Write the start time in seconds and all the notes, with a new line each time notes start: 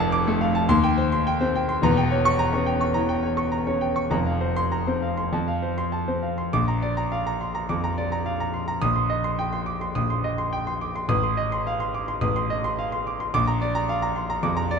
Already playing: F1 F2 A4 F5 D6
0.00 A5
0.12 D6
0.27 A3 A4
0.41 F5
0.55 A5
0.69 D#2 C6
0.83 G5
0.97 C5
1.12 C6
1.27 G5
1.41 C4 C5
1.55 G5
1.69 C6
1.82 E1 E2 A#5
1.97 G5
2.11 C#5
2.25 C#6
2.39 A#5
2.53 C#4 C#5
2.66 G5
2.81 C#6
2.94 E3 A#5
3.09 G5
3.23 C#5
3.37 C#6
3.52 A#5
3.67 C#4 C#5
3.81 G5
3.96 C#6
4.10 F1 F2 A#5
4.26 F5
4.41 C5
4.57 C6
4.72 A#5
4.87 C4 C5
5.03 F5
5.17 C6
5.33 F2 A5
5.48 F5
5.62 C5
5.78 C6
5.92 A5
6.08 C4 C5
6.23 F5
6.38 C6
6.53 A#1 D6
6.68 A#5
6.82 D5
6.97 A#5
7.12 F5
7.27 A#5
7.41 C6
7.55 A#5
7.69 F2 D6
7.84 A#5
7.98 D5
8.12 A#5
8.26 F5
8.40 A#5
8.54 C6
8.68 A#5
8.82 A#1 D#6
8.96 C6
9.10 D#5
9.24 C6
9.39 G5
9.53 C6
9.66 D6
9.81 C6
9.95 A#1 D#6
10.10 C6
10.24 D#5
10.38 C6
10.53 G5
10.67 C6
10.81 D6
10.96 C6
11.09 A1 D#6
11.23 C6
11.37 D#5
11.52 C6
11.67 F5
11.80 C6
11.94 D6
12.08 C6
12.21 A1 D#6
12.36 C6
12.50 D#5
12.64 C6
12.79 F5
12.92 C6
13.07 D6
13.20 C6
13.34 A#1 D6
13.47 A#5
13.62 D5
13.75 A#5
13.89 F5
14.02 A#5
14.16 C6
14.30 A#5
14.43 F2 D6
14.57 A#5
14.71 D5